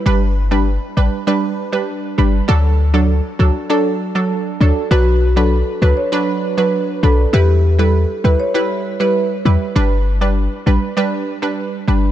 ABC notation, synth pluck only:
X:1
M:4/4
L:1/16
Q:1/4=99
K:Glyd
V:1 name="Synth pluck"
[G,DB] z2 [G,DB] z2 [G,DB] z [G,DB]3 [G,DB]3 [G,DB]2 | [F,DA] z2 [F,DA] z2 [F,DA] z [F,DA]3 [F,DA]3 [F,DA]2 | [F,DB] z2 [F,DB] z2 [F,DB] z [F,DB]3 [F,DB]3 [F,DB]2 | [G,EB] z2 [G,EB] z2 [G,EB] z [G,EB]3 [G,EB]3 [G,EB]2 |
[G,DB] z2 [G,DB] z2 [G,DB] z [G,DB]3 [G,DB]3 [G,DB]2 |]